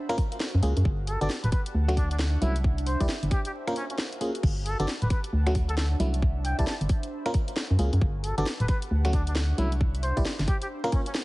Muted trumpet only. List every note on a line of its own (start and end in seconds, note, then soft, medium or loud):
1.08 1.19 A4 loud
1.21 1.30 D5 medium
1.44 1.49 B4 medium
1.52 1.61 B4 medium
1.97 2.06 D4 medium
2.11 2.16 D4 medium
2.42 2.55 E4 medium
2.87 3.00 C5 medium
3.32 3.40 G4 medium
3.46 3.51 G4 medium
3.76 3.85 C#4 medium
3.90 3.96 C#4 medium
4.66 4.77 A4 medium
4.80 4.88 D5 medium
5.02 5.07 B4 medium
5.11 5.20 B4 medium
5.69 5.74 A4 medium
5.78 5.87 A4 medium
6.45 6.56 G5 medium
6.59 6.64 A5 medium
6.67 6.76 A5 medium
8.24 8.35 A4 medium
8.38 8.46 D5 loud
8.60 8.66 B4 medium
8.69 8.78 B4 medium
9.13 9.22 D4 medium
9.28 9.33 D4 medium
9.58 9.72 E4 medium
10.03 10.17 C5 medium
10.48 10.57 G4 medium
10.62 10.67 G4 medium
10.92 11.01 C#4 medium
11.06 11.12 C#4 medium